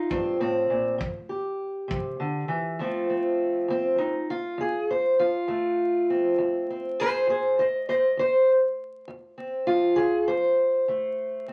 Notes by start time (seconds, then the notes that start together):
Already playing: D#4 F4
0.10 G2 C4, kick
0.40 A2 C4
0.70 A#2
0.98 C3, kick
1.29 G4
1.88 C3, kick
2.20 D3
2.48 E3
2.79 F2 F3 A3 C4 F4
3.10 C4
3.68 F2 C4
3.98 D#4
4.30 F4
4.58 F2 G#4
4.90 C5
5.19 F4
5.48 F2 A3
6.10 C4
6.38 F2
6.70 C4
7.00 G#4 C5
7.27 F2 G#4 C5
7.59 C5 D#5
7.89 C5 D#5
8.17 F2 C5
9.08 F2
9.38 C4
9.67 F4
9.96 F2 G#4
10.28 C5
10.88 F2 A3
11.48 C4